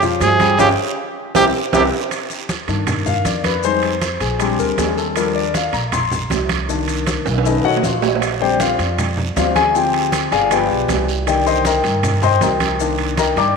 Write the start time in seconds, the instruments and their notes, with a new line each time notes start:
Already playing: upright bass F2
0.02 grand piano F3 F4 F5, high conga, low conga, maracas
0.20 upright bass G2, trombone F3, trumpet G#4, high conga, high timbale, low timbale, short guiro, maracas
0.39 grand piano G3 G4 G5, high conga, high timbale, short guiro, maracas
0.58 upright bass G1, trombone C#3, grand piano C#4 F4 G4, trumpet G4, high conga, high timbale, long guiro, maracas
1.35 upright bass C2, trombone C3, grand piano C4 E4 G4, trumpet G4, high conga, high timbale, long guiro, maracas
1.73 upright bass C2, trombone C3, grand piano C4 E4 G4, trumpet G4, high conga, high timbale, long guiro, maracas
2.11 high conga, high timbale, long guiro, maracas
2.30 high conga, maracas
2.49 high conga, high timbale, short guiro, maracas
2.68 upright bass G2, grand piano D#3 A#3 D4, high conga, high timbale, short guiro, maracas
2.87 high conga, low conga, high timbale, long guiro, maracas
3.06 grand piano F5, high conga, low conga, maracas
3.25 upright bass F2, grand piano D5, high conga, high timbale, short guiro, maracas
3.44 grand piano B4, high conga, high timbale, short guiro, maracas
3.63 grand piano G3 G#3 D#4 C5, high conga, long guiro, maracas
3.83 high conga, high timbale
4.01 high conga, high timbale, short guiro, maracas
4.20 upright bass A#1, grand piano G#4, high conga, high timbale, short guiro, maracas
4.39 grand piano G3 G#3 C4 D4 G4, high conga, high timbale, long guiro, maracas
4.58 upright bass D2, grand piano A#4, high conga, maracas
4.78 upright bass D#2, grand piano G#4, high conga, high timbale, low timbale, short guiro, maracas
4.97 grand piano A4, high conga, short guiro, maracas
5.16 grand piano F3 G3 D4 A#4, high conga, high timbale, long guiro, maracas
5.35 grand piano D5, high conga
5.54 grand piano F5, high conga, high timbale, short guiro, maracas
5.73 upright bass A#1, grand piano A#5, high conga, high timbale, short guiro, maracas
5.92 grand piano C6, high conga, low conga, high timbale, long guiro, maracas
6.11 high conga, low conga, maracas
6.30 upright bass C2, high conga, high timbale, low timbale, short guiro, maracas
6.49 high conga, high timbale, short guiro, maracas
6.69 grand piano D#3 A#3 D4, long guiro, maracas
6.88 high conga, high timbale, maracas
7.07 high conga, high timbale, short guiro, maracas
7.26 upright bass B1, high conga, high timbale, short guiro, maracas
7.38 high timbale
7.45 grand piano D#3 A3 C#4 D#4 A4 B4 D#5, high conga, long guiro, maracas
7.64 upright bass B1, grand piano F#4 C#5 D#5 F#5, high conga
7.77 low timbale
7.83 upright bass A#1, grand piano F4 F5, high conga, short guiro, maracas
8.02 high conga, low timbale, short guiro, maracas
8.15 low timbale
8.22 high conga, high timbale, long guiro, maracas
8.40 grand piano D3 G3 C4 G4 C5 D5 G5, high conga
8.60 grand piano F4 C5 D5 F5, high conga, high timbale, short guiro, maracas
8.79 upright bass F2, high conga, high timbale, short guiro, maracas
8.98 high conga, low conga, high timbale, long guiro, maracas
9.17 high conga, low conga
9.36 upright bass D2, grand piano D3 G3 C4 F4 C5 D5 F5, high conga, high timbale, low timbale, short guiro, maracas
9.56 grand piano G#4 G#5, high conga, high timbale, short guiro, maracas
9.74 grand piano F3 G#3 C4 G4 G5, high conga, long guiro, maracas
9.94 high conga, high timbale
10.12 high conga, high timbale, short guiro, maracas
10.32 upright bass G1, grand piano G#4 D5 F5 G#5, high conga, high timbale, short guiro, maracas
10.51 grand piano F3 G#3 B3 G4 B4 D5 G5, high conga, high timbale, long guiro, maracas
10.70 upright bass B1, high conga
10.88 upright bass C2, high conga, high timbale, low timbale, short guiro, maracas
11.07 high conga, short guiro, maracas
11.27 grand piano D3 D#3 A#3 G4 D5 D#5 G5, high conga, high timbale, long guiro, maracas
11.46 grand piano C5 D#5 G5 C6, high conga, maracas
11.65 grand piano A#4 D#5 G5 A#5, high conga, high timbale, short guiro, maracas
11.84 upright bass G2, high conga, high timbale, short guiro, maracas
12.03 high conga, low conga, high timbale, long guiro, maracas
12.22 grand piano C5 D#5 G5 C6, high conga, low conga, maracas
12.41 upright bass C2, grand piano A#4 D#5 G5 A#5, high conga, high timbale, low timbale, short guiro, maracas
12.60 high conga, high timbale, short guiro, maracas
12.79 grand piano D#3 A#3 D4, high conga, long guiro, maracas
12.98 high conga, high timbale
13.17 grand piano A#4 D#5 G5 A#5, high conga, high timbale, short guiro, maracas
13.36 upright bass G2, grand piano D#3 A#3 D4 D5 G5 A#5 D6, high conga, high timbale, short guiro, maracas